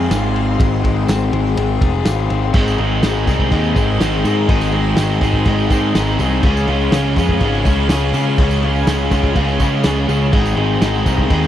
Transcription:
Already playing: G#3 C4 F4 G#4 C5 F5 C6
0.10 G#1 F4, snare, ride, tambourine
0.35 C4, ride
0.59 G#1 G#3 G5, kick, ride
0.83 G#3, kick, ride
1.07 G#1 C4, snare, ride, tambourine
1.32 G#1 G#3, ride
1.46 snare
1.56 G#1 C4, ride
1.81 F1 G#4, kick, ride
2.05 G#1 F4, snare, ride, tambourine
2.30 G#1 C4, ride
2.53 G#1 G#2 D#3 G#3 C4 D#4 G#4 C5 D#5 C6, kick, crash
2.67 tambourine
2.78 G#1 G#2 D#3 G#3 C4 D#4 G#4, crash
3.03 G#1 G#2 D#3 G#3 C4 D#4 G#4, snare, tambourine, crash
3.16 tambourine
3.27 C2 G#2 D#3 G#3 C4 D#4 G#4, kick, tambourine, crash
3.40 kick
3.51 D#2 G#2 D#3 G#3 C4 D#4 G#4, kick, crash
3.65 tambourine
3.75 G#1 G#2 D#3 G#3 C4 D#4 G#4, kick, tambourine, crash
3.99 G#1 G#2 D#3 G#3 C4 D#4 G#4, snare, tambourine, crash
4.24 G#2 D#3 G#3 C4 D#4 G#4, tambourine, crash
4.48 G#1 G#2 D#3 G#3 C4 D#4 G#4, kick, crash
4.61 snare, tambourine
4.72 G#2 D#3 G#3 C4 D#4 G#4, crash
4.96 G#1 G#2 D#3 G#3 C4 D#4 G#4, snare, tambourine, crash
5.11 tambourine
5.21 G#1 G#2 D#3 G#3 C4 D#4 G#4, kick, tambourine, crash
5.34 kick
5.45 G#1 G#2 D#3 G#3 C4 D#4 G#4, kick, crash
5.60 tambourine
5.70 G#2 D#3 G#3 C4 D#4 G#4, kick, tambourine, crash
5.94 G#1 G#2 D#3 G#3 C4 D#4 G#4, snare, tambourine, crash
6.08 tambourine
6.19 C2 G#2 D#3 G#3 C4 D#4 G#4, tambourine, crash
6.42 C#2 C#3 G#3 C#4 F4 G#4 C#5 F5 C#6, kick, crash
6.57 tambourine
6.67 C#2 C#3 G#3 C#4 F4 G#4, crash
6.91 C#2 C#3 G#3 C#4 F4 G#4, snare, tambourine, crash
7.06 tambourine
7.16 F2 C#3 G#3 C#4 F4 G#4, kick, tambourine, crash
7.29 kick
7.40 G#1 C#3 G#3 C#4 F4, kick, crash
7.45 G#4
7.54 tambourine
7.65 C#2 C#3 G#3 C#4 F4 G#4, kick, tambourine, crash
7.89 C#2 C#3 G#3 C#4 F4 G#4, snare, tambourine, crash
8.02 tambourine
8.13 C#3 G#3 C#4 F4 G#4, tambourine, crash
8.38 C#2 C#3 G#3 C#4 F4 G#4, kick, tambourine, crash
8.51 tambourine
8.63 C#3 G#3 C#4 F4 G#4, crash
8.76 tambourine
8.87 C#2 C#3 G#3 C#4 F4 G#4, snare, tambourine, crash
9.00 tambourine
9.11 C#2 C#3 G#3 C#4 F4 G#4, kick, tambourine, crash
9.23 kick
9.35 C#2 C#3 G#3 C#4 F4 G#4, kick, tambourine, crash
9.48 tambourine
9.59 C#3 G#3 C#4 F4 G#4, kick, tambourine, crash
9.83 C#2 C#3 G#3 C#4 F4 G#4, snare, tambourine, crash
9.97 tambourine
10.07 C#2 C#3 G#3 C#4 F4 G#4, tambourine, crash
10.21 tambourine
10.31 G#1 G#2 D#3 G#3 C4 D#4 G#4 C5 D#5 C6, kick, crash
10.46 tambourine
10.55 G#1 G#2 D#3 G#3 C4 D#4 G#4, crash
10.80 G#1 G#2 D#3 G#3 C4 D#4 G#4, snare, tambourine, crash
10.94 tambourine
11.05 C2 G#2 D#3 G#3 C4 D#4 G#4, kick, tambourine, crash
11.18 kick
11.29 D#2 G#2 D#3 G#3 C4 D#4 G#4, kick, crash
11.43 tambourine

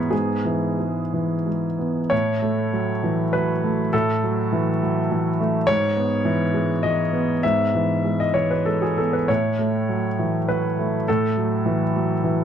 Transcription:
Already playing: G#2 E3 G#3 B3 B4 C#5
0.10 G#2 G#4
0.45 E3
0.79 G#3
1.14 E3
1.46 G#3
1.79 B3
2.10 A2 C#5
2.42 A3
2.73 F#3
3.03 E3
3.33 F#3 B4
3.64 A3
3.93 A2 A4
4.24 F#3
4.53 E3
4.82 F#3
5.11 E3
5.40 A3
5.67 G#2 C#5
5.97 B3
6.25 E3
6.54 G#3
6.83 E3 D#5
7.13 B3
7.43 G#2 E5
7.75 E3
8.05 G#3
8.20 D#5
8.34 E3 C#5
8.51 B4
8.65 G#3 A4
8.82 G#4
8.97 B3 A4
9.13 B4
9.28 A2 C#5
9.59 A3
9.89 F#3
10.19 E3
10.48 F#3 B4
10.79 A3
11.08 A2 A4
11.37 F#3
11.66 E3
11.96 F#3
12.24 E3

